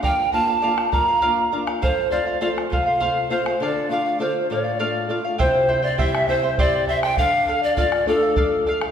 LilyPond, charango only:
\new Staff \with { instrumentName = "Charango" } { \time 6/8 \key d \minor \tempo 4. = 67 <bes' d'' f''>8 <bes' d'' f''>16 <d'' f''>16 <bes' d'' f''>8 <bes' d'' f''>16 <d'' f''>16 <bes' d'' f''>8 <bes' d'' f''>16 <d'' f''>16 | <a' c'' f''>8 <a' c'' f''>16 <c'' f''>16 <a' c'' f''>8 <a' c'' f''>16 <c'' f''>16 <a' c'' f''>8 <a' c'' f''>16 <c'' f''>16 | <a' d'' f''>8 <a' d'' f''>16 <d'' f''>16 <a' d'' f''>8 <a' d'' f''>16 <d'' f''>16 <a' d'' f''>8 <a' d'' f''>16 <d'' f''>16 | <e' g' c'' e'' g''>8 <e' c'' e'' g''>16 <e' c'' g''>16 <e' g' c'' e'' g''>8 <e' c'' e'' g''>16 <e' c'' g''>16 <e' g' c'' e'' g''>8 <e' c'' e'' g''>16 <e' c'' g''>16 |
<a' d'' f''>8 <a' d'' f''>16 <d'' f''>16 <a' d'' f''>8 <a' d'' f''>16 <d'' f''>16 <a' d'' f''>8 <a' d'' f''>16 <d'' f''>16 | }